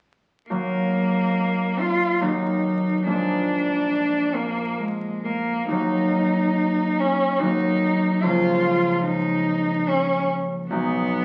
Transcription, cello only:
0.49 1.82 A#3 soft
1.80 2.23 F4 soft
2.22 3.07 D#4 soft
3.08 4.36 D4 soft
4.35 4.80 A#3 soft
4.79 5.26 G#3 soft
5.25 5.70 A#3 soft
5.70 7.01 D#4 soft
6.99 7.41 C#4 medium
7.40 8.24 D#4 medium
8.22 9.05 F4 soft
9.05 9.90 D#4 medium
9.88 10.30 C#4 soft
10.69 11.25 B3 medium

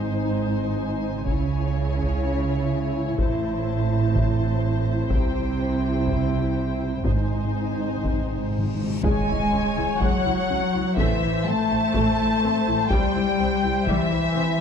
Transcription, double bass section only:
0.00 1.23 G#1 medium
1.27 3.20 C#2 medium
3.20 5.08 A1 medium
5.11 7.06 C2 medium
7.05 8.80 G#1 soft
9.03 9.11 C#2 medium
9.28 9.36 C#2 soft
9.52 9.60 C#2 medium
9.77 9.85 C#2 soft
10.01 10.09 C#2 medium
10.25 10.33 C#2 soft
10.49 10.57 C#2 soft
10.74 10.82 C#2 soft
10.98 11.06 A1 medium
11.23 11.31 A1 medium
11.47 11.55 A1 medium
11.71 11.79 A1 soft
11.96 12.04 A1 medium
12.20 12.28 A1 medium
12.44 12.52 A1 soft
12.68 12.76 A1 soft
12.91 12.99 C2 medium
13.16 13.24 C2 medium
13.39 13.47 C2 medium
13.63 13.71 C2 medium
13.87 13.95 C2 medium
14.11 14.19 C2 soft
14.35 14.43 C2 soft

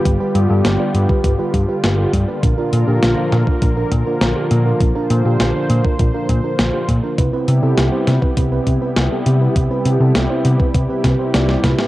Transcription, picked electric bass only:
0.05 0.16 G1 loud
0.35 0.46 G2 loud
0.50 0.60 G2 medium
0.65 0.75 G1 medium
0.95 1.05 G2 medium
1.24 1.35 G1 medium
1.54 1.64 G2 medium
1.84 2.05 G1 medium
2.13 2.24 G2 loud
2.43 2.53 A#1 loud
2.73 2.83 A#2 loud
2.88 2.98 A#2 medium
3.03 3.13 A#1 medium
3.32 3.43 A#2 medium
3.62 3.83 A#1 medium
3.92 4.02 A#2 medium
4.21 4.32 A#1 medium
4.51 4.72 A#2 medium
4.81 4.91 A#1 loud
5.11 5.21 A#2 loud
5.25 5.36 A#2 medium
5.40 5.51 A#1 medium
5.70 5.80 A#2 medium
5.99 6.10 A#1 medium
6.29 6.40 A#2 loud
6.59 6.69 A#1 medium
6.89 6.99 A#2 medium
7.18 7.29 C2 loud
7.48 7.58 C3 loud
7.63 7.73 C3 medium
7.78 7.88 C2 medium
8.07 8.18 C3 medium
8.37 8.58 C2 medium
8.67 8.77 C3 medium
8.96 9.07 C2 medium
9.26 9.47 C3 medium
9.56 9.66 C2 loud
9.86 9.96 C3 loud
10.00 10.11 C3 medium
10.15 10.26 C2 medium
10.45 10.55 C3 medium
10.75 10.85 C2 medium
11.04 11.15 C3 medium
11.34 11.55 C2 medium
11.64 11.74 C3 loud

